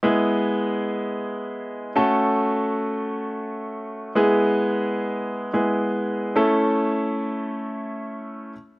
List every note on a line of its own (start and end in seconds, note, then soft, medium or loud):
0.03 1.92 G#3 medium
0.03 1.92 B3 medium
0.03 1.92 E4 medium
0.03 1.92 G#4 medium
1.96 4.12 A3 medium
1.96 4.12 C#4 medium
1.96 4.12 F#4 medium
1.96 4.12 A4 medium
4.15 5.51 G#3 medium
4.15 5.51 B3 medium
4.15 5.51 E4 medium
4.15 5.51 G#4 medium
5.53 6.36 G#3 medium
5.53 6.36 B3 medium
5.53 6.35 E4 soft
5.53 6.36 G#4 medium
6.36 8.52 A3 medium
6.36 8.52 C#4 medium
6.36 8.53 E4 medium
6.36 8.53 A4 medium